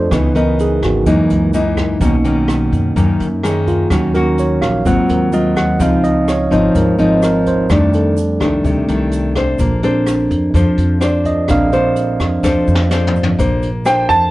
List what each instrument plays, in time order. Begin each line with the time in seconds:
Already playing: tine electric piano A3 C4 D4 F4 A4 C5 D5 D#5
0.11 upright bass C#2, nylon-string guitar C#3 E3 B3 D#4, tine electric piano E3 B3 D#4 B4, kick, cross-stick, closed hi-hat, shaker
0.35 nylon-string guitar E3 B3 D#4, tine electric piano A#4, closed hi-hat, shaker
0.59 tine electric piano G#4, closed hi-hat, shaker
0.83 upright bass G#1, tine electric piano F#4, kick, cross-stick, closed hi-hat, shaker
1.06 nylon-string guitar F#2 E3 A#3 D#4, upright bass F#2, tine electric piano E3 G#3 A#3 D#4 E4, kick, closed hi-hat, shaker
1.30 upright bass C#2, closed hi-hat, shaker
1.53 nylon-string guitar E3 A#3 D#4, closed hi-hat, shaker
1.77 kick, cross-stick, closed hi-hat, shaker
2.00 upright bass B1, nylon-string guitar B2 D#3 A#3 C#4, tine electric piano A#3 C#4 D#4, kick, closed hi-hat, shaker
2.25 nylon-string guitar D#3 A#3 C#4, closed hi-hat, shaker
2.48 cross-stick, closed hi-hat, shaker
2.72 upright bass F#2, kick, closed hi-hat, shaker
2.96 nylon-string guitar F#2 D#3 A#3 C#4, upright bass F#2, kick, closed hi-hat, shaker
3.20 upright bass F#2, closed hi-hat, shaker
3.43 nylon-string guitar D#3 A#3 C#4, tine electric piano G#4, cross-stick, closed hi-hat, shaker
3.67 tine electric piano F4, kick, closed hi-hat, shaker
3.90 upright bass D#2, nylon-string guitar D#3 A#3 C#4 F#4, tine electric piano F#3 C#4 F#4, kick, cross-stick, closed hi-hat, shaker
4.14 nylon-string guitar A#3 C#4 F#4, tine electric piano A#4, closed hi-hat, shaker
4.38 tine electric piano C#5, closed hi-hat, shaker
4.62 upright bass A#1, tine electric piano F5, kick, cross-stick, closed hi-hat, shaker
4.84 upright bass G#1, nylon-string guitar G#2 F#3 C4 F4, tine electric piano F#3 A#3 C4 F4 F#5, kick, closed hi-hat, shaker
5.09 upright bass D#2, tine electric piano A#4, closed hi-hat, shaker
5.32 nylon-string guitar F#3 C4 F4, tine electric piano D#5, closed hi-hat, shaker
5.56 tine electric piano F#5, kick, cross-stick, closed hi-hat, shaker
5.79 upright bass C#2, nylon-string guitar C#3 F3 C4 D#4, tine electric piano F3 C4 D#4 F5, kick, closed hi-hat, shaker
6.04 tine electric piano D#5, closed hi-hat, shaker
6.28 tine electric piano C#5, cross-stick, closed hi-hat, shaker
6.51 upright bass G#1, nylon-string guitar F3 C4 D#4, tine electric piano C5, kick, closed hi-hat, shaker
6.75 upright bass G#1, nylon-string guitar G#2, tine electric piano A#4, kick, closed hi-hat, shaker
6.98 upright bass G#1, nylon-string guitar F3 C4 D#4, tine electric piano F3 C4 D#4, closed hi-hat, shaker
7.22 tine electric piano A#4, cross-stick, closed hi-hat, shaker
7.46 tine electric piano C5, kick, closed hi-hat, shaker
7.69 nylon-string guitar F2 D#3 A3 D4, upright bass F2, tine electric piano G3 A3 D4 D5, kick, cross-stick, closed hi-hat, shaker
7.93 tine electric piano A4, closed hi-hat, shaker
8.17 closed hi-hat, shaker
8.40 upright bass C2, nylon-string guitar D#3 A3 D4, kick, cross-stick, closed hi-hat, shaker
8.64 upright bass C2, nylon-string guitar C3, kick, closed hi-hat, shaker
8.88 upright bass C2, nylon-string guitar D#3 A3 D4, closed hi-hat, shaker
9.11 closed hi-hat, shaker
9.35 nylon-string guitar D4 A4 C5, kick, cross-stick, closed hi-hat, shaker
9.59 upright bass A#1, nylon-string guitar A#3, kick, closed hi-hat, shaker
9.83 tine electric piano C4 D4, nylon-string guitar D4 A4 C5, closed hi-hat, shaker
10.06 cross-stick, closed hi-hat, shaker
10.30 upright bass F2, kick, closed hi-hat, shaker
10.54 upright bass F2, nylon-string guitar F3 D4 A4 C5, kick, closed hi-hat, shaker
10.77 upright bass F2, closed hi-hat, shaker
11.01 nylon-string guitar D4 A4 C5, tine electric piano D5, cross-stick, closed hi-hat, shaker
11.25 tine electric piano D#5, kick, closed hi-hat, shaker
11.48 upright bass A#1, nylon-string guitar A#3, tine electric piano C4 D4 F5, kick, cross-stick, closed hi-hat, shaker
11.72 nylon-string guitar D4 A4 C5, tine electric piano C5, closed hi-hat, shaker
11.96 closed hi-hat, shaker
12.20 upright bass F2, kick, cross-stick, closed hi-hat, shaker
12.43 upright bass F2, nylon-string guitar F3 D4 A4 C5, kick, snare, shaker
12.68 upright bass F2, shaker
12.75 snare
12.91 nylon-string guitar D4 A4 C5, snare, shaker
13.07 floor tom
13.15 shaker
13.23 floor tom
13.38 upright bass A#1, nylon-string guitar A#3 D4 A4 C5, kick, closed hi-hat, shaker
13.62 closed hi-hat, shaker
13.85 nylon-string guitar D4 A4 C5, grand piano G5, cross-stick, closed hi-hat, shaker
14.09 upright bass F2, grand piano A5, kick, closed hi-hat, shaker